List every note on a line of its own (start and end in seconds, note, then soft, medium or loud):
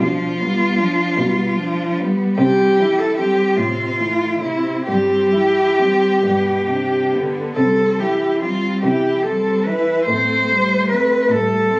0.00 1.02 B2 soft
0.00 0.42 F3 soft
0.00 0.42 D4 soft
0.00 1.94 F4 medium
0.40 0.81 G3 soft
0.40 0.79 B3 soft
0.77 1.20 F3 soft
0.77 1.20 D4 soft
1.17 2.22 B2 medium
1.17 1.56 G3 soft
1.17 1.57 B3 soft
1.56 1.99 F3 soft
1.56 2.01 D4 soft
1.98 2.37 G3 soft
1.98 2.39 B3 soft
2.37 3.42 C3 medium
2.37 2.80 G3 soft
2.37 2.82 C4 soft
2.37 3.00 G4 medium
2.79 3.20 E3 soft
2.79 3.21 E4 soft
2.98 3.16 A4 medium
3.17 3.57 G3 soft
3.17 3.58 C4 soft
3.17 3.59 G4 medium
3.56 4.69 A2 medium
3.56 4.01 C3 soft
3.56 3.99 C4 soft
3.56 4.40 F4 medium
3.98 4.44 E3 soft
3.98 4.44 A3 soft
4.41 4.87 C3 soft
4.41 4.86 C4 soft
4.41 4.85 E4 soft
4.87 6.06 G2 soft
4.87 5.35 G3 soft
4.87 5.33 C4 soft
4.87 7.09 G4 medium
5.32 5.79 E3 soft
5.32 5.80 E4 soft
5.78 6.23 G3 soft
5.78 6.23 C4 soft
6.23 7.39 G2 soft
6.23 6.69 B2 soft
6.23 6.68 B3 soft
6.67 7.16 C3 soft
6.67 7.14 D4 soft
7.13 7.56 D3 soft
7.13 7.56 B3 soft
7.55 8.66 C3 soft
7.55 8.01 G3 soft
7.55 8.02 C4 soft
7.55 8.01 A4 medium
7.99 8.43 E3 soft
7.99 8.44 E4 soft
7.99 8.41 G4 soft
8.41 8.85 G3 soft
8.41 8.86 C4 soft
8.41 8.81 F4 soft
8.82 9.90 C3 soft
8.82 9.25 E3 soft
8.82 9.26 E4 soft
8.82 9.24 G4 soft
9.23 9.68 G3 soft
9.23 9.69 C4 soft
9.23 9.66 A4 soft
9.65 10.07 E3 soft
9.65 10.08 E4 soft
9.65 10.05 B4 soft
10.06 11.13 A2 soft
10.06 10.50 A3 soft
10.06 10.87 C5 medium
10.11 10.53 C4 soft
10.49 10.90 G3 soft
10.49 10.92 A3 soft
10.89 11.32 A3 soft
10.89 11.33 C4 soft
10.89 11.33 B4 medium
11.28 11.80 A2 medium
11.28 11.70 G3 soft
11.28 11.69 A3 soft
11.28 11.80 A4 medium
11.70 11.80 A3 soft
11.70 11.80 C4 soft